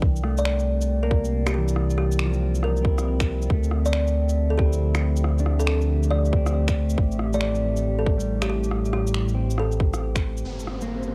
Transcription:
Already playing: E3 D4 G5
0.02 C2 C3, kick
0.16 D5, shaker
0.23 A3 C4, cross-stick
0.38 D5, shaker
0.45 finger snap
0.59 shaker
0.81 shaker
1.03 A#3 A#4
1.11 kick
1.25 shaker
1.46 G4, finger snap, cross-stick, shaker
1.54 G4
1.58 E3
1.68 shaker
1.76 cross-stick
1.90 shaker
1.98 G4, cross-stick
2.12 shaker
2.19 finger snap
2.25 F3
2.31 A#3, shaker
2.36 C4
2.55 shaker
2.63 A#4, cross-stick
2.77 shaker
2.83 C4, kick
2.87 E4
2.98 cross-stick, shaker
3.20 finger snap, kick, shaker
3.42 shaker
3.50 D2 D3 A3, kick
3.62 A3, shaker
3.71 cross-stick
3.85 D5, shaker
3.93 G4, finger snap
4.07 shaker
4.18 F3
4.29 shaker
4.50 A4
4.58 C4 G4 E5, kick
4.65 E4
4.73 shaker
4.95 finger snap, cross-stick, shaker
5.16 shaker
5.24 cross-stick
5.38 D4, shaker
5.46 cross-stick
5.59 A4, shaker
5.67 A4, finger snap
5.81 shaker
6.03 shaker
6.11 D5, cross-stick
6.25 shaker
6.33 C4, kick
6.46 cross-stick, shaker
6.68 finger snap, kick, shaker
6.90 shaker
6.98 A1 A2, kick
7.12 shaker
7.19 cross-stick
7.33 A3 D5, shaker
7.39 C4 D5, finger snap
7.55 shaker
7.77 shaker
7.99 A4
8.06 kick
8.18 G3, shaker
8.42 G4, finger snap, cross-stick, shaker
8.50 G4
8.64 shaker
8.71 cross-stick
8.85 shaker
8.93 G4, cross-stick
9.07 shaker
9.14 finger snap
9.28 shaker
9.35 C4
9.50 shaker
9.58 A4, cross-stick
9.72 shaker
9.80 kick
9.94 cross-stick, shaker
10.16 finger snap, kick, shaker
10.37 shaker
10.45 G1 G3 C4 C5, downlifter
10.59 shaker
10.67 D4, cross-stick
10.81 A#3, shaker
10.86 A4
11.03 shaker

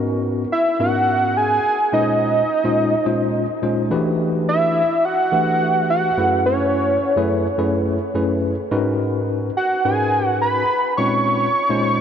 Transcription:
Already playing: G#2 B3 C#4 D#4 F#4 A#4
0.52 E5
0.80 G#2 B3 C#4 D#4 F#4 A#4 F#5
1.37 G#5
1.92 A#2 G#3 C#4 D#4 F4 B4 D#5
2.00 C5
2.64 A#2 G#3 C#4 D#4 F4 C5
3.05 A#2 G#3 C#4 D#4 F4 C5
3.62 A#2 G#3 C#4 D#4 F4 C5
3.91 E3 A3 D4 F#4 G4 B4
4.49 E5
5.05 F#5
5.32 E3 A3 D4 F#4 G4 B4
5.90 F#5
6.17 F#2 A3 C#4 E4 G#4 B4
6.46 C#5
7.17 F#2 A3 C#4 E4 G#4 B4
7.58 F#2 A3 C#4 E4 G#4 B4
8.14 F#2 A3 C#4 E4 G#4 B4
8.71 G#2 C#4 D#4 F#4 A#4 B4
9.57 F#5
9.85 G#2 C#4 D#4 F#4 A#4 B4 G#5
10.26 F#5
10.42 B5
10.97 A#2 G#3 C4 C#4 D#4 F4 C#6
11.69 A#2 G#3 C#4 D#4 F4 C5

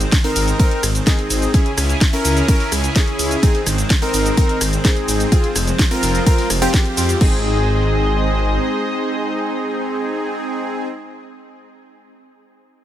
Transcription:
Already playing: D#3 G#3 C4
0.00 closed hi-hat, shaker
0.12 kick, snare, closed hi-hat, shaker
0.24 C4 D#4 A#4, open hi-hat
0.36 G#1, open hi-hat, ride, shaker
0.48 closed hi-hat, shaker
0.60 C4 D#4 A#4, kick, closed hi-hat, shaker
0.71 closed hi-hat
0.83 G#1, cross-stick, open hi-hat, ride, shaker
0.95 closed hi-hat, shaker
1.07 C4 D#4 G#4, kick, snare, closed hi-hat, shaker
1.19 closed hi-hat
1.30 G#1, open hi-hat, ride, shaker
1.42 closed hi-hat, shaker
1.54 C#3 C#4 E4 G#4, kick, closed hi-hat, shaker
1.66 closed hi-hat
1.78 C#2, cross-stick, open hi-hat, ride, shaker
1.89 closed hi-hat, shaker
2.01 kick, snare, closed hi-hat, shaker
2.13 C#4 E4 A#4, open hi-hat
2.25 C#2, open hi-hat, ride, shaker
2.37 closed hi-hat, shaker
2.48 C#4 E4 A#4, kick, closed hi-hat, shaker
2.60 open hi-hat
2.72 C#2, cross-stick, open hi-hat, ride, shaker
2.84 closed hi-hat, shaker
2.96 C#4 E4 G#4, kick, snare, closed hi-hat, shaker
3.07 closed hi-hat
3.19 C#2, open hi-hat, ride, shaker
3.31 closed hi-hat, shaker
3.43 D#3 G#3 C4 D#4 G#4, kick, closed hi-hat, shaker
3.55 closed hi-hat
3.67 G#1, cross-stick, open hi-hat, ride, shaker
3.78 closed hi-hat, shaker
3.90 kick, snare, closed hi-hat, shaker
4.02 C4 D#4 A#4, open hi-hat
4.14 G#1, open hi-hat, ride, shaker
4.26 closed hi-hat, shaker
4.37 C4 D#4 A#4, kick, closed hi-hat, shaker
4.49 closed hi-hat
4.61 G#1, cross-stick, open hi-hat, ride, shaker
4.73 closed hi-hat, shaker
4.85 C4 D#4 G#4, kick, snare, closed hi-hat, shaker
4.97 closed hi-hat
5.08 G#1, open hi-hat, ride, shaker
5.20 closed hi-hat, shaker
5.32 F3 G#3 C4 F4 G#4, kick, closed hi-hat, shaker
5.44 closed hi-hat
5.56 F1, cross-stick, open hi-hat, ride, shaker
5.67 closed hi-hat, shaker
5.79 kick, snare, closed hi-hat, shaker
5.91 C4 F4 A#4, open hi-hat
6.03 F1, open hi-hat, ride, shaker
6.15 closed hi-hat, shaker
6.26 C4 F4 A#4, kick, closed hi-hat, shaker
6.38 open hi-hat
6.50 F1, cross-stick, open hi-hat, ride, shaker
6.62 C4 F4 G4, closed hi-hat, shaker
6.74 kick, snare, closed hi-hat, shaker
6.86 closed hi-hat
6.97 F2, open hi-hat, ride, shaker
7.09 closed hi-hat, shaker
7.21 G#1 G#3 C4 D#4 G#4 C5 D#5, kick, crash

